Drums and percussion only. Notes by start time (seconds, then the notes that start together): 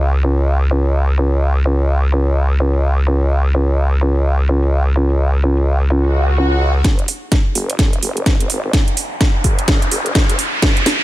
0.23 closed hi-hat
0.37 closed hi-hat
0.70 closed hi-hat
0.85 closed hi-hat
1.18 closed hi-hat
1.32 closed hi-hat
1.65 closed hi-hat
1.79 closed hi-hat
2.03 closed hi-hat
2.12 closed hi-hat
2.26 closed hi-hat
2.50 closed hi-hat
2.59 closed hi-hat
2.74 closed hi-hat
3.07 closed hi-hat
3.21 closed hi-hat
3.54 closed hi-hat
3.92 closed hi-hat
4.01 closed hi-hat
4.15 closed hi-hat
4.39 closed hi-hat
4.48 closed hi-hat
4.63 closed hi-hat
4.96 closed hi-hat
5.10 closed hi-hat
5.34 closed hi-hat
5.43 closed hi-hat
5.57 closed hi-hat
5.81 closed hi-hat
5.90 closed hi-hat
6.04 closed hi-hat
6.28 closed hi-hat
6.37 closed hi-hat
6.52 closed hi-hat
6.75 closed hi-hat
6.84 kick, snare, closed hi-hat
6.99 closed hi-hat
7.08 open hi-hat
7.32 kick, snare, closed hi-hat
7.55 open hi-hat
7.70 closed hi-hat
7.79 kick, snare, closed hi-hat
7.93 closed hi-hat
8.03 open hi-hat
8.17 closed hi-hat
8.26 kick, snare, closed hi-hat
8.40 closed hi-hat
8.50 open hi-hat
8.73 kick, snare, closed hi-hat
8.88 closed hi-hat
8.97 open hi-hat
9.21 kick, snare, closed hi-hat
9.44 kick, open hi-hat
9.59 closed hi-hat
9.68 kick, snare, closed hi-hat
9.82 closed hi-hat
9.91 open hi-hat
10.06 closed hi-hat
10.15 kick, snare, closed hi-hat
10.29 closed hi-hat
10.39 open hi-hat
10.62 kick, snare, closed hi-hat
10.77 closed hi-hat
10.86 snare, open hi-hat